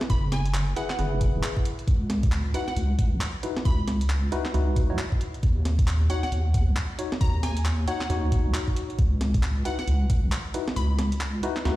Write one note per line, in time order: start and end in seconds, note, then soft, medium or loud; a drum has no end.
0.01 snare medium
0.01 closed hi-hat soft
0.10 0.74 F#1 loud
0.10 0.24 B5 medium
0.10 kick loud
0.10 closed hi-hat medium
0.32 0.47 G#5 loud
0.32 snare medium
0.32 closed hi-hat loud
0.46 closed hi-hat medium
0.54 clap loud
0.54 closed hi-hat medium
0.76 0.88 E4 medium
0.76 0.88 G#4 medium
0.76 0.88 B4 loud
0.76 0.85 F#5 medium
0.76 closed hi-hat medium
0.90 0.96 F#5 medium
0.90 clap medium
0.90 snare soft
0.90 closed hi-hat soft
0.99 1.31 F#1 loud
0.99 1.64 E4 medium
0.99 1.64 G#4 medium
0.99 1.64 B4 medium
0.99 snare soft
0.99 closed hi-hat medium
1.21 kick loud
1.21 closed hi-hat loud
1.34 1.42 E1 loud
1.43 clap loud
1.43 closed hi-hat medium
1.57 kick medium
1.65 closed hi-hat medium
1.79 closed hi-hat soft
1.88 2.52 C#2 medium
1.88 kick loud
1.88 closed hi-hat medium
2.10 snare medium
2.10 closed hi-hat loud
2.23 kick loud
2.23 closed hi-hat medium
2.32 clap loud
2.32 closed hi-hat medium
2.54 2.66 D#4 medium
2.54 2.66 E4 medium
2.54 2.66 F#4 medium
2.54 2.66 B4 medium
2.54 2.63 F#5 medium
2.54 closed hi-hat medium
2.68 2.73 F#5 medium
2.68 snare soft
2.68 closed hi-hat soft
2.76 3.09 C#2 loud
2.76 closed hi-hat medium
2.99 kick loud
2.99 closed hi-hat loud
3.12 3.20 B1 loud
3.21 clap loud
3.21 closed hi-hat medium
3.43 3.55 D#4 medium
3.43 3.55 E4 medium
3.43 3.55 F#4 medium
3.43 3.55 B4 medium
3.43 closed hi-hat medium
3.57 snare medium
3.57 closed hi-hat soft
3.65 4.30 C#2 medium
3.65 3.80 B5 medium
3.65 kick loud
3.65 closed hi-hat medium
3.88 snare medium
3.88 closed hi-hat loud
4.01 closed hi-hat medium
4.10 clap loud
4.10 closed hi-hat medium
4.32 4.44 D#4 loud
4.32 4.44 E4 medium
4.32 4.44 F#4 medium
4.32 4.44 B4 loud
4.32 closed hi-hat medium
4.45 clap medium
4.45 snare soft
4.45 closed hi-hat soft
4.54 4.87 C#2 medium
4.54 4.87 D#4 medium
4.54 4.87 E4 medium
4.54 4.87 F#4 medium
4.54 4.87 B4 medium
4.54 snare soft
4.54 closed hi-hat medium
4.76 kick loud
4.76 closed hi-hat loud
4.90 4.97 B1 loud
4.90 4.97 D#4 medium
4.90 4.97 E4 medium
4.90 4.97 F#4 medium
4.90 4.97 C#5 medium
4.99 clap loud
4.99 closed hi-hat medium
5.12 kick medium
5.21 closed hi-hat medium
5.34 closed hi-hat soft
5.43 6.08 D#2 loud
5.43 kick loud
5.43 closed hi-hat medium
5.65 snare medium
5.65 closed hi-hat loud
5.79 kick loud
5.79 closed hi-hat medium
5.88 clap loud
5.88 closed hi-hat medium
6.10 6.21 D#4 medium
6.10 6.21 F#4 medium
6.10 6.21 C#5 medium
6.10 6.18 F#5 medium
6.10 closed hi-hat medium
6.23 6.29 F#5 medium
6.23 snare soft
6.23 closed hi-hat soft
6.32 6.64 D#2 medium
6.32 closed hi-hat medium
6.54 kick loud
6.54 closed hi-hat loud
6.68 6.75 C#2 loud
6.77 clap loud
6.77 closed hi-hat medium
6.99 7.10 D#4 medium
6.99 7.10 F#4 medium
6.99 7.10 C#5 medium
6.99 closed hi-hat medium
7.12 snare medium
7.12 closed hi-hat soft
7.21 7.85 D#2 medium
7.21 7.35 A#5 medium
7.21 kick loud
7.21 closed hi-hat medium
7.43 7.58 G#5 medium
7.43 snare medium
7.43 closed hi-hat loud
7.57 closed hi-hat medium
7.65 clap loud
7.65 closed hi-hat medium
7.87 7.99 D#4 loud
7.87 7.99 F#4 medium
7.87 7.99 C#5 loud
7.87 7.96 F#5 medium
7.87 closed hi-hat medium
8.01 8.07 F#5 medium
8.01 clap medium
8.01 snare soft
8.01 closed hi-hat soft
8.10 8.42 D#2 loud
8.10 8.98 D#4 medium
8.10 8.98 F#4 medium
8.10 8.98 C#5 medium
8.10 snare soft
8.10 closed hi-hat medium
8.32 kick loud
8.32 closed hi-hat loud
8.45 8.53 C#2 loud
8.54 clap loud
8.54 closed hi-hat medium
8.68 kick medium
8.76 closed hi-hat medium
8.90 closed hi-hat soft
8.99 9.63 C#2 medium
8.99 kick loud
8.99 closed hi-hat medium
9.21 snare medium
9.21 closed hi-hat loud
9.34 kick loud
9.34 closed hi-hat medium
9.43 clap loud
9.43 closed hi-hat medium
9.65 9.77 D#4 medium
9.65 9.77 E4 medium
9.65 9.77 F#4 medium
9.65 9.77 B4 medium
9.65 9.74 F#5 medium
9.65 closed hi-hat medium
9.79 9.84 F#5 medium
9.79 snare soft
9.79 closed hi-hat soft
9.88 10.20 C#2 loud
9.88 closed hi-hat medium
10.10 kick loud
10.10 closed hi-hat loud
10.23 10.31 B1 loud
10.32 clap loud
10.32 closed hi-hat medium
10.54 10.66 D#4 medium
10.54 10.66 E4 medium
10.54 10.66 F#4 medium
10.54 10.66 B4 medium
10.54 closed hi-hat medium
10.68 snare medium
10.68 closed hi-hat soft
10.76 11.41 C#2 loud
10.76 10.91 B5 medium
10.76 closed hi-hat medium
10.99 snare medium
10.99 closed hi-hat loud
11.12 closed hi-hat medium
11.21 clap loud
11.21 closed hi-hat medium
11.43 11.55 D#4 loud
11.43 11.55 E4 medium
11.43 11.55 F#4 medium
11.43 11.55 B4 loud
11.43 closed hi-hat loud
11.57 clap medium
11.57 snare soft
11.57 closed hi-hat soft
11.65 11.76 C#2 loud
11.65 11.76 D#4 medium
11.65 11.76 E4 medium
11.65 11.76 F#4 medium
11.65 11.76 B4 medium
11.65 snare medium
11.65 closed hi-hat medium